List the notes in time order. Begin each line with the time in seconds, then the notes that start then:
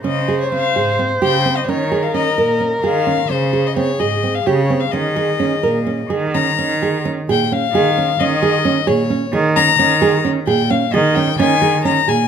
0.02 C#3 C#4 C5 D#5
0.28 G#4
0.41 C#5
0.52 C4 F5
0.73 G#2 G#4
0.99 C4
1.21 C#3 G4 G5
1.45 C4
1.56 D#5
1.67 D#3 C#4 A#4 C#5
1.92 G#4
2.02 F5
2.14 C#4 D#5
2.37 A#2 A#4
2.60 C#4
2.81 D#3 G#4 F5
3.07 C#4
3.28 C#3 C#4 G#4 C5
3.53 G#4
3.67 D#5
3.76 C4 C#5
3.98 G#2 G#4 D#5
4.23 C4
4.35 F5
4.44 C#3 G4 C#5
4.70 C4
4.80 F5
4.91 D#3 C#4 G#4 D#5
5.16 G#4
5.40 C#4
5.62 A#2 A#4
5.86 C#4
6.10 D#3 G#4
6.34 C#4 A#5
6.59 D#3 C#4
6.82 G#4
7.05 C#4
7.28 A#2 G#4 G5
7.43 G5
7.52 C#4 F5
7.73 D#3 G#4
7.98 C#4
8.19 D#3 C#4 D#5
8.42 G#4
8.65 C#4
8.87 A#2 G#4 C#5
9.10 C#4
9.33 D#3 G#4
9.56 C#4 A#5
9.79 D#3 C#4
10.02 G#4
10.25 C#4
10.47 A#2 G#4 G5
10.70 C#4 F5
10.92 D#3 G#4 D#5
11.15 C#4 G5
11.38 D#3 C#4 G#5
11.62 G#4
11.85 C#4 A#5
12.07 A#2 G#4 G#5